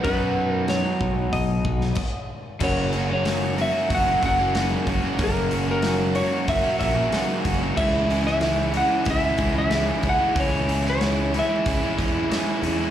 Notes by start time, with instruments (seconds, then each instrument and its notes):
0.04 fingered electric bass F#2, overdriven electric guitar B2 F#3 B3 D#4 F#4, steel-string acoustic guitar D#3 B4, electric slide guitar B4, kick, open hi-hat
0.36 steel-string acoustic guitar F#3 B3 F#4 B4
0.51 electric slide guitar A#4
0.67 steel-string acoustic guitar F#3 B3 F#4 B4, electric slide guitar C#5, snare, open hi-hat
1.01 fingered electric bass B1, kick
1.33 fingered electric bass B1, electric slide guitar D#5, kick, open hi-hat
1.65 fingered electric bass B1, steel-string acoustic guitar B3 F#4 B4, kick
1.69 steel-string acoustic guitar F#3
1.81 snare
1.95 kick, crash
2.60 fingered electric bass F#1, overdriven electric guitar F#2 C#3 F#3 A#3 C#4, electric slide guitar C#5, kick, crash
2.64 overdriven electric guitar F#4, steel-string acoustic guitar A#4
2.93 overdriven electric guitar F#3 A#3 C#4 F#4, steel-string acoustic guitar A#4, open hi-hat
3.09 overdriven electric guitar F#3 A#3 C#4 F#4, electric slide guitar C#5
3.24 overdriven electric guitar F#2 C#3 F#3 A#3 C#4 F#4, snare, open hi-hat
3.29 steel-string acoustic guitar A#4
3.56 overdriven electric guitar F#3 A#3 C#4 F#4, open hi-hat
3.61 electric slide guitar E5
3.72 overdriven electric guitar F#3 A#3 C#4 F#4
3.88 fingered electric bass F#1, overdriven electric guitar F#3 A#3 C#4 F#4, kick, open hi-hat
3.93 steel-string acoustic guitar A#4, electric slide guitar F#5
4.05 overdriven electric guitar F#3 A#3 C#4 F#4
4.21 fingered electric bass F#1, overdriven electric guitar F#3 A#3 C#4 F#4, kick, open hi-hat
4.26 electric slide guitar F#5
4.39 overdriven electric guitar F#3 A#3 C#4 F#4
4.55 overdriven electric guitar F#2 C#3 F#3 A#3 C#4 F#4, steel-string acoustic guitar A#4, snare, open hi-hat
4.87 fingered electric bass F#1, overdriven electric guitar F#3 A#3 C#4 F#4, kick, open hi-hat
5.04 overdriven electric guitar F#3 A#3 C#4 F#4
5.19 fingered electric bass F#1, overdriven electric guitar F#2 C#3 F#3 A#3 C#4 F#4, steel-string acoustic guitar A#4, kick, open hi-hat
5.24 electric slide guitar A#4
5.50 overdriven electric guitar F#3 A#3 C#4 F#4, steel-string acoustic guitar A#4, open hi-hat
5.67 overdriven electric guitar F#3 A#3 C#4 F#4
5.71 electric slide guitar A#4
5.82 overdriven electric guitar F#2 C#3 F#3 A#3 C#4, snare, open hi-hat
5.87 overdriven electric guitar F#4, steel-string acoustic guitar A#4
6.15 overdriven electric guitar F#3 A#3 C#4 F#4, steel-string acoustic guitar A#4, electric slide guitar C#5, open hi-hat
6.30 overdriven electric guitar F#3 A#3 C#4 F#4
6.48 fingered electric bass F#1, overdriven electric guitar F#3 A#3 C#4 F#4, steel-string acoustic guitar A#4, electric slide guitar E5, kick, open hi-hat
6.63 overdriven electric guitar F#3 A#3 C#4 F#4
6.79 fingered electric bass A#1, overdriven electric guitar F#3 A#3 C#4 F#4, electric slide guitar E5, kick, open hi-hat
6.95 overdriven electric guitar F#3 A#3 C#4 F#4
7.12 overdriven electric guitar F#2 C#3 F#3 A#3 C#4 F#4, steel-string acoustic guitar A#4, snare, open hi-hat
7.45 fingered electric bass F#1, overdriven electric guitar F#3 A#3 C#4 F#4, steel-string acoustic guitar A#4, kick, open hi-hat
7.61 overdriven electric guitar F#3 A#3 C#4 F#4
7.77 fingered electric bass C#2, overdriven electric guitar C#3 E3 G#3 C#4 E4, steel-string acoustic guitar G#4, electric slide guitar E5, kick, crash
8.09 overdriven electric guitar E3 G#3 C#4 E4, steel-string acoustic guitar G#4, open hi-hat
8.26 overdriven electric guitar G#3 C#4 E4, electric slide guitar E5, snare
8.41 overdriven electric guitar C#3 E3 G#3 C#4, steel-string acoustic guitar G#4, snare, open hi-hat
8.45 overdriven electric guitar E4
8.74 overdriven electric guitar E3 G#3 C#4 E4, electric slide guitar F#5, open hi-hat
8.88 overdriven electric guitar G#3 C#4 E4
9.05 fingered electric bass C#2, steel-string acoustic guitar C#3 G#4, overdriven electric guitar E3 G#3 C#4, kick, open hi-hat
9.09 overdriven electric guitar E4, electric slide guitar E5
9.24 overdriven electric guitar G#3 C#4 E4
9.38 fingered electric bass C#2, overdriven electric guitar E3 G#3 C#4 E4, kick, open hi-hat
9.55 overdriven electric guitar G#3 C#4 E4, electric slide guitar E5
9.70 overdriven electric guitar C#3 E3 G#3 C#4 E4, steel-string acoustic guitar G#4, snare, open hi-hat
10.03 fingered electric bass C#2, overdriven electric guitar E3 G#3 C#4 E4, steel-string acoustic guitar G#4, kick, open hi-hat
10.09 electric slide guitar F#5
10.18 overdriven electric guitar G#3 C#4 E4
10.35 fingered electric bass C#2, overdriven electric guitar C#3 E3 G#3 C#4 E4, steel-string acoustic guitar G#4, kick, open hi-hat
10.40 electric slide guitar C#5
10.67 overdriven electric guitar E3 G#3 C#4 E4, steel-string acoustic guitar G#4, open hi-hat
10.84 overdriven electric guitar G#3 C#4 E4, snare
10.90 electric slide guitar C#5
11.00 overdriven electric guitar C#3 E3 G#3 C#4 E4, steel-string acoustic guitar G#4, snare, open hi-hat
11.32 overdriven electric guitar E3 G#3 C#4, steel-string acoustic guitar G#4, open hi-hat
11.36 overdriven electric guitar E4, electric slide guitar E5
11.49 overdriven electric guitar G#3 C#4 E4
11.66 fingered electric bass C#2, steel-string acoustic guitar C#3 G#4, overdriven electric guitar E3 G#3 C#4 E4, kick, open hi-hat
11.82 overdriven electric guitar G#3 C#4 E4
11.97 fingered electric bass E2, overdriven electric guitar E3 G#3 C#4 E4, kick, open hi-hat
12.15 overdriven electric guitar G#3 C#4 E4
12.30 overdriven electric guitar C#3 E3 G#3 C#4 E4, steel-string acoustic guitar G#4, snare, open hi-hat
12.63 fingered electric bass E2, overdriven electric guitar E3 G#3 C#4 E4, open hi-hat
12.80 overdriven electric guitar G#3 C#4 E4